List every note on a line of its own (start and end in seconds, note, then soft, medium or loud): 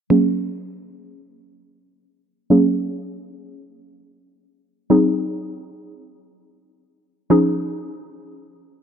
0.10 2.47 F#3 medium
0.10 2.47 A#3 medium
0.10 2.47 C#4 medium
0.10 2.47 G#4 medium
2.50 4.86 F#3 medium
2.50 4.87 A#3 medium
2.50 4.87 C#4 medium
2.50 4.87 G#4 medium
4.90 7.26 F#3 medium
4.90 7.27 C4 medium
4.90 7.27 D#4 medium
4.90 7.27 G#4 medium
7.30 8.83 F3 medium
7.30 8.83 C#4 medium
7.30 8.83 D#4 medium
7.30 8.83 G#4 medium